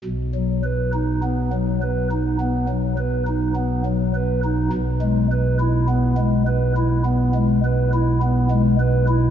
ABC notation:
X:1
M:4/4
L:1/16
Q:1/4=52
K:B
V:1 name="Pipe organ"
B,, F, B D B, F, B D B, F, B D B, F, B D | B,, G, B E B, G, B E B, G, B E B, G, B E |]
V:2 name="Pipe organ" clef=bass
B,,,16 | B,,,16 |]